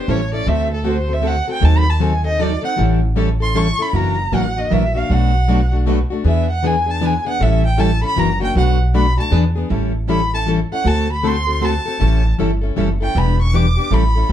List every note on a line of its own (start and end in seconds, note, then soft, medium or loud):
0.00 0.12 C5 medium
0.08 0.39 A1 medium
0.08 0.20 E3 medium
0.08 0.20 G3 medium
0.08 0.20 C#4 medium
0.08 0.20 E4 medium
0.08 0.21 A4 medium
0.08 0.34 C#5 medium
0.32 0.46 C#4 soft
0.32 0.47 E4 soft
0.32 0.46 A4 medium
0.32 0.50 D5 medium
0.46 1.39 D2 medium
0.46 0.68 D3 medium
0.46 0.69 A3 medium
0.46 0.69 C4 medium
0.46 0.69 F#4 medium
0.46 0.69 A4 medium
0.46 0.72 E5 medium
0.74 0.89 A4 medium
0.84 0.96 D3 medium
0.84 0.96 A3 medium
0.84 0.96 C4 medium
0.84 0.97 F#4 medium
0.84 0.97 A4 medium
0.88 1.15 C5 medium
1.08 1.21 C4 soft
1.08 1.21 F#4 soft
1.08 1.22 A4 soft
1.13 1.28 E5 medium
1.21 1.34 D3 medium
1.21 1.35 A3 medium
1.21 1.35 C4 medium
1.21 1.35 F#4 loud
1.21 1.35 A4 medium
1.27 1.50 F#5 medium
1.48 1.60 C4 soft
1.48 1.61 F#4 medium
1.48 1.61 A4 medium
1.52 1.66 G5 medium
1.61 2.55 D#2 medium
1.61 1.83 D#3 medium
1.61 1.84 F#3 medium
1.61 1.84 C4 medium
1.61 1.84 D#4 medium
1.61 1.84 A4 medium
1.61 1.79 A5 medium
1.78 1.91 B5 loud
1.90 2.04 A5 medium
2.00 2.12 D#3 medium
2.00 2.12 F#3 medium
2.00 2.13 C4 loud
2.00 2.13 D#4 loud
2.00 2.13 A4 loud
2.00 2.27 G#5 medium
2.24 2.38 C4 soft
2.24 2.38 D#4 soft
2.24 2.39 A4 medium
2.24 2.43 D#5 medium
2.39 2.51 D#3 medium
2.39 2.51 F#3 medium
2.39 2.51 C4 medium
2.39 2.51 D#4 medium
2.39 2.51 A4 loud
2.39 2.64 D5 medium
2.62 2.77 C4 medium
2.62 2.77 D#4 medium
2.62 2.76 A4 medium
2.62 2.73 F#5 medium
2.76 3.71 A1 loud
2.76 2.99 E3 medium
2.76 2.99 G3 medium
2.76 3.00 C#4 medium
2.76 3.00 E4 medium
2.76 3.00 A4 medium
3.16 3.28 E3 medium
3.16 3.28 G3 medium
3.16 3.28 C#4 loud
3.16 3.29 E4 loud
3.16 3.29 A4 medium
3.40 3.54 C#4 soft
3.40 3.54 E4 medium
3.40 3.54 A4 medium
3.40 3.59 C6 loud
3.55 3.67 E3 medium
3.55 3.67 G3 medium
3.55 3.67 C#4 medium
3.55 3.67 E4 medium
3.55 3.67 A4 loud
3.55 3.83 C#6 loud
3.79 3.94 C#4 soft
3.79 3.94 E4 medium
3.79 3.93 A4 medium
3.79 3.98 B5 medium
3.93 4.24 F#1 loud
3.93 4.15 E3 medium
3.93 4.16 F#3 medium
3.93 4.16 A#3 medium
3.93 4.16 D4 medium
3.93 4.16 E4 medium
3.93 4.16 F#4 medium
3.93 4.16 A#4 medium
3.93 4.36 A#5 medium
4.32 4.65 A1 medium
4.32 4.44 E3 medium
4.32 4.44 F#3 medium
4.32 4.44 A#3 medium
4.32 4.44 D4 medium
4.32 4.44 E4 medium
4.32 4.44 F#4 loud
4.32 4.45 A#4 medium
4.32 4.60 F#5 medium
4.56 4.70 A#3 soft
4.56 4.70 D4 soft
4.56 4.70 F#4 medium
4.56 4.74 D#5 medium
4.71 5.04 A#1 medium
4.71 4.83 E3 medium
4.71 4.82 F#3 medium
4.71 4.83 A#3 loud
4.71 4.83 D4 medium
4.71 4.82 E4 medium
4.71 4.83 F#4 medium
4.71 4.83 A#4 medium
4.71 4.99 E5 medium
4.95 5.10 A#3 medium
4.95 5.09 D4 medium
4.95 5.09 F#4 medium
4.95 5.14 F5 medium
5.09 6.02 B1 medium
5.09 5.31 B2 medium
5.09 5.31 F#3 medium
5.09 5.32 A3 medium
5.09 5.32 D4 medium
5.09 5.32 F#4 medium
5.09 5.32 B4 medium
5.09 5.74 F#5 loud
5.48 5.59 B2 medium
5.48 5.60 F#3 medium
5.48 5.60 A3 medium
5.48 5.60 D4 loud
5.48 5.60 F#4 medium
5.48 5.60 B4 medium
5.72 5.86 A3 soft
5.72 5.86 D4 medium
5.72 5.86 F#4 medium
5.86 5.98 B2 medium
5.86 5.98 F#3 loud
5.86 5.98 A3 loud
5.86 5.98 D4 loud
5.86 5.98 F#4 loud
5.86 5.99 B4 medium
6.10 6.24 A3 medium
6.10 6.24 D4 medium
6.10 6.24 F#4 medium
6.24 7.17 E2 medium
6.24 6.46 E3 medium
6.24 6.46 B3 medium
6.24 6.47 D4 medium
6.24 6.47 G#4 medium
6.24 6.47 B4 medium
6.24 6.49 E5 medium
6.51 6.68 F#5 medium
6.63 6.75 E3 medium
6.63 6.75 B3 medium
6.63 6.75 D4 medium
6.63 6.76 G#4 loud
6.63 6.76 B4 medium
6.63 6.92 G#5 loud
6.86 7.00 B3 soft
6.86 7.00 D4 soft
6.86 7.00 G#4 medium
6.91 7.07 A5 loud
7.00 7.12 E3 medium
7.00 7.13 B3 medium
7.00 7.13 D4 loud
7.00 7.13 G#4 loud
7.00 7.14 B4 loud
7.05 7.28 G#5 medium
7.25 7.40 B3 medium
7.25 7.40 D4 medium
7.25 7.39 G#4 medium
7.25 7.44 F#5 loud
7.39 8.02 A1 loud
7.39 7.61 E3 medium
7.39 7.62 G3 medium
7.39 7.62 C#4 medium
7.39 7.62 E4 medium
7.39 7.62 A4 medium
7.39 7.66 E5 loud
7.66 7.82 G5 medium
7.77 7.89 E3 loud
7.77 7.90 G3 medium
7.77 7.90 C#4 medium
7.77 7.90 E4 loud
7.77 7.90 A4 loud
7.77 8.04 A5 medium
8.02 8.17 C#4 medium
8.02 8.16 E4 soft
8.02 8.16 A4 medium
8.02 8.20 B5 loud
8.16 8.48 F#1 loud
8.16 8.28 E3 medium
8.16 8.28 F#3 medium
8.16 8.28 A#3 medium
8.16 8.29 D4 loud
8.16 8.29 E4 loud
8.16 8.29 F#4 loud
8.16 8.29 A#4 loud
8.16 8.42 A#5 loud
8.40 8.55 A#3 medium
8.40 8.55 D4 medium
8.40 8.54 F#4 medium
8.40 8.55 G5 medium
8.55 9.17 B1 loud
8.55 8.77 B2 medium
8.55 8.77 F#3 medium
8.55 8.77 A3 medium
8.55 8.78 D4 medium
8.55 8.78 F#4 medium
8.55 8.78 B4 medium
8.55 8.71 F#5 loud
8.93 9.05 B2 medium
8.93 9.05 F#3 medium
8.93 9.05 A3 medium
8.93 9.06 D4 loud
8.93 9.06 F#4 loud
8.93 9.06 B4 medium
8.93 9.18 B5 loud
9.17 9.31 A3 soft
9.17 9.31 D4 soft
9.17 9.31 F#4 medium
9.17 9.32 A5 medium
9.31 9.62 E2 medium
9.31 9.43 E3 medium
9.31 9.43 B3 medium
9.31 9.44 D4 loud
9.31 9.43 G#4 loud
9.31 9.44 B4 loud
9.56 9.70 B3 medium
9.56 9.70 D4 medium
9.56 9.69 G#4 medium
9.70 10.62 A1 medium
9.70 9.92 E3 medium
9.70 9.92 G3 medium
9.70 9.92 C#4 medium
9.70 9.92 E4 medium
9.70 9.92 A4 medium
10.08 10.20 E3 medium
10.08 10.20 G3 medium
10.08 10.20 C#4 medium
10.08 10.20 E4 medium
10.08 10.21 A4 loud
10.08 10.32 B5 medium
10.34 10.47 C#4 soft
10.34 10.47 E4 soft
10.34 10.47 A4 soft
10.34 10.42 A5 loud
10.47 10.58 E3 medium
10.47 10.59 G3 medium
10.47 10.59 C#4 medium
10.47 10.59 E4 medium
10.47 10.59 A4 loud
10.72 10.85 C#4 soft
10.72 10.86 E4 medium
10.72 10.85 A4 medium
10.72 10.89 F#5 medium
10.85 11.77 D2 medium
10.85 11.07 D3 medium
10.85 11.07 A3 medium
10.85 11.07 C4 medium
10.85 11.08 F#4 medium
10.85 11.08 A4 medium
10.85 11.11 A5 loud
11.13 11.29 B5 medium
11.23 11.35 D3 medium
11.23 11.35 A3 medium
11.23 11.35 C4 loud
11.23 11.35 F#4 medium
11.23 11.35 A4 loud
11.27 11.66 C6 loud
11.47 11.60 C4 soft
11.47 11.61 F#4 soft
11.47 11.61 A4 medium
11.61 11.73 D3 medium
11.61 11.73 A3 medium
11.61 11.73 C4 loud
11.61 11.74 F#4 medium
11.61 11.74 A4 loud
11.61 12.26 A5 loud
11.86 11.99 C4 soft
11.86 12.00 F#4 medium
11.86 11.99 A4 medium
11.99 12.31 A1 loud
11.99 12.22 E3 medium
11.99 12.22 G3 medium
11.99 12.22 C#4 medium
11.99 12.22 E4 medium
11.99 12.22 A4 medium
12.39 12.72 G1 medium
12.39 12.50 E3 medium
12.39 12.50 G3 loud
12.39 12.51 C#4 medium
12.39 12.51 E4 loud
12.39 12.51 A4 loud
12.61 12.76 C#4 soft
12.61 12.76 E4 soft
12.61 12.76 A4 medium
12.76 13.10 F#1 medium
12.76 12.88 E3 medium
12.76 12.88 G3 medium
12.76 12.88 C#4 medium
12.76 12.89 E4 medium
12.76 12.89 A4 loud
13.01 13.16 C#4 soft
13.01 13.15 E4 medium
13.01 13.14 A4 medium
13.01 13.19 G5 medium
13.15 13.76 E1 loud
13.15 13.37 E3 medium
13.15 13.37 G3 medium
13.15 13.37 B3 medium
13.15 13.38 D4 medium
13.15 13.38 E4 medium
13.15 13.38 G4 medium
13.15 13.38 B4 medium
13.15 13.41 B5 medium
13.42 13.57 C#6 medium
13.53 13.65 E3 medium
13.53 13.65 G3 medium
13.53 13.65 B3 medium
13.53 13.65 D4 loud
13.53 13.65 E4 medium
13.53 13.66 G4 medium
13.53 13.65 B4 medium
13.53 13.96 D6 medium
13.77 13.91 B3 soft
13.77 13.91 D4 soft
13.77 13.91 G4 soft
13.91 14.22 A1 medium
13.91 14.03 E3 medium
13.91 14.03 G3 medium
13.91 14.03 C#4 medium
13.91 14.03 E4 loud
13.91 14.03 A4 medium
13.91 14.32 B5 medium
14.16 14.29 C#4 soft
14.16 14.29 E4 medium
14.16 14.29 A4 medium
14.29 14.32 D2 medium
14.29 14.32 D3 medium